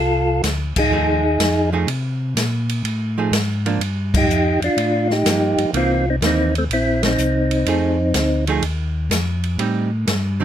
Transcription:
Already playing: C2 A4
0.00 F4
0.43 D2, snare, hi-hat pedal, ride
0.76 D2 D#4 G#4, kick, crash
0.91 D#2 F3 A3 D#4 G#4
1.39 F2, snare, hi-hat pedal, ride
1.73 F3 A3 D#4 G#4
1.87 C3, ride
2.35 A#2, snare, hi-hat pedal, ride
2.69 ride
2.84 A2, ride
3.18 F3 A3 D#4 G#4
3.31 G#2, snare, hi-hat pedal, ride
3.66 F3 A#3 D4, ride
3.80 G2, ride
4.14 D#4 G4, kick, crash
4.28 F2, hi-hat pedal
4.61 F2 D4, ride
4.66 F4
4.77 A2, ride
5.10 D#4 G4, snare
5.25 G2 F3 A#3, snare, hi-hat pedal, ride
5.58 G2, ride
5.73 C2 E3 A#3 C4 D#4 F4, ride
6.10 C4 D#4
6.21 D#2 E3 A#3 D#4, snare, hi-hat pedal, ride
6.26 C4 D#4
6.55 A3 C4, ride
6.69 A#1 E4, ride
6.74 C4
7.03 C4 D#4, snare, ride
7.18 C2, hi-hat pedal
7.51 ride
7.66 F2 F3 A3 D#4 G#4, ride
8.14 D2, snare, hi-hat pedal, ride
8.47 F3 A3 D#4 G#4, ride
8.62 D#2, ride
9.10 F2, snare, hi-hat pedal, ride
9.44 ride
9.58 A2 G3 C4 D#4, ride
10.07 G2, snare, hi-hat pedal, ride
10.40 D3 F#3 C4 D#4

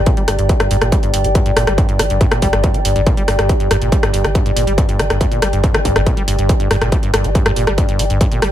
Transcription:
Already playing: G4 D5 G5 A#5
0.06 A#2, kick, closed hi-hat
0.17 G3, closed hi-hat
0.28 G1 G2, cross-stick, open hi-hat
0.39 G1 G2, closed hi-hat
0.49 G3, kick, closed hi-hat
0.60 G2, cross-stick, closed hi-hat
0.71 G1 G2, open hi-hat
0.81 G1 A#2, cross-stick, closed hi-hat
0.92 G3, kick, closed hi-hat
1.03 G2, closed hi-hat
1.14 G1 G2, open hi-hat
1.24 G1 G3, closed hi-hat
1.35 G2, kick, closed hi-hat
1.46 G2, closed hi-hat
1.56 G1 A#2, cross-stick, open hi-hat
1.67 G1 G3, cross-stick, closed hi-hat
1.78 G2, kick, closed hi-hat
1.89 G2, closed hi-hat
1.99 G1 G3, cross-stick, open hi-hat
2.10 G1 G2, closed hi-hat
2.21 G2, kick, closed hi-hat
2.32 A#2, cross-stick, closed hi-hat
2.42 G1 G3, kick, open hi-hat
2.53 G1 G2, cross-stick, closed hi-hat
2.64 G2, kick, closed hi-hat
2.74 G3, closed hi-hat
2.85 G1 G2, open hi-hat
2.96 G1 G2, closed hi-hat
3.06 A#2, kick, closed hi-hat
3.17 G3, closed hi-hat
3.28 G1 G2, cross-stick, open hi-hat
3.39 G1 G2, cross-stick, closed hi-hat
3.49 G3, kick, closed hi-hat
3.60 G2, closed hi-hat
3.71 G1 G2, cross-stick, open hi-hat
3.81 G1 A#2, closed hi-hat
3.92 G3, kick, closed hi-hat
4.03 G2, cross-stick, closed hi-hat
4.13 G1 G2, open hi-hat
4.24 G1 G3, cross-stick, closed hi-hat
4.35 G2, kick, closed hi-hat
4.46 G2, closed hi-hat
4.56 G1 A#2, open hi-hat
4.67 G1 G3, closed hi-hat
4.78 G2, kick, closed hi-hat
4.89 G2, closed hi-hat
4.99 G1 G3, cross-stick, open hi-hat
5.10 G1 G2, cross-stick, closed hi-hat
5.21 G2, kick, closed hi-hat
5.31 A#2, closed hi-hat
5.42 G1 G3, cross-stick, open hi-hat
5.53 G1 G2, closed hi-hat
5.64 kick, closed hi-hat
5.74 G3, cross-stick, closed hi-hat
5.85 G1 G2, kick, open hi-hat
5.96 G1 G2, cross-stick, closed hi-hat
6.06 A#2, kick, closed hi-hat
6.17 G3, closed hi-hat
6.28 G1 G2, open hi-hat
6.38 G1 G2, closed hi-hat
6.49 G3, kick, closed hi-hat
6.60 G2, closed hi-hat
6.71 G1 G2, cross-stick, open hi-hat
6.81 G1 A#2, cross-stick, closed hi-hat
6.92 G3, kick, closed hi-hat
7.03 G2, closed hi-hat
7.13 G1 G2, cross-stick, open hi-hat
7.24 G1 G3, closed hi-hat
7.35 G2, kick, closed hi-hat
7.46 G2, cross-stick, closed hi-hat
7.56 G1 A#2, open hi-hat
7.67 G1 G3, cross-stick, closed hi-hat
7.78 G2, kick, closed hi-hat
7.89 G2, closed hi-hat
7.99 G1 G3, open hi-hat
8.10 G1 G2, closed hi-hat
8.21 G2, kick, closed hi-hat
8.31 A#2, closed hi-hat
8.42 G1 G3, cross-stick, open hi-hat

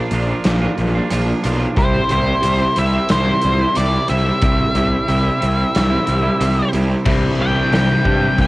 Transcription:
Already playing: A#2 F3 D4 F4
0.00 A#3
0.11 A#1 F3 A#3 D4, closed hi-hat
0.15 F4
0.29 A#3 D4 F4
0.44 A#1, snare, closed hi-hat
0.62 A#3 D4 F4
0.78 A#1, closed hi-hat
0.95 A#3 D4 F4
1.10 A#1 A#2 F3 A#3 D4 F4, closed hi-hat
1.43 B1 F3 A#3 D4 F4, closed hi-hat
1.59 A#3 D4 F4
1.75 C2 C3 G3 C4 E4 C5, kick, closed hi-hat
2.09 C2 C3 G3 C4 E4 C5, closed hi-hat
2.26 G3 C4 E4
2.41 C2 C3 G3 C4 E4, closed hi-hat
2.58 G3 C4 E4
2.75 C2 C3 G3 C4 E4 E5, closed hi-hat
2.92 G3 C4 E4
3.09 C2 C5, snare, closed hi-hat
3.25 G3 C4 E4
3.42 C2, closed hi-hat
3.59 G3 C4 E4
3.75 C2 C3 G3 C4 E4 D5, closed hi-hat
4.08 C2 C3 G3 C4 E4 E5, snare, closed hi-hat
4.25 G3 C4 E4
4.41 C2 C3 G3 C4 E4, kick, closed hi-hat
4.75 C2 C3 G3 C4 E4, closed hi-hat
4.91 G3 C4 E4
5.07 C2 C3 G3 C4 E4, closed hi-hat
5.23 G3 C4 E4
5.40 C2 C3 G3 C4 E4, closed hi-hat
5.57 G3 C4 E4
5.75 C2, snare, closed hi-hat
5.90 G3 C4 E4
6.07 C2, closed hi-hat
6.23 G3 C4 E4
6.40 C2 C3 G3 C4 E4, closed hi-hat
6.73 C2 C3 G3 C4 E4, closed hi-hat
6.89 G3 C4 E4
7.05 C2 C3 E3 G3 C4 D4 E4, kick, crash
7.38 C2 E3 G3 D4 E4 G5
7.55 G3 D4 E4
7.70 C2 C3 E3 G3 D4 E4, snare, open hi-hat
7.75 G5
8.03 G2 E3 G3 D4 E4, kick
8.20 G3 D4 E4
8.38 C2 A5, kick, open hi-hat

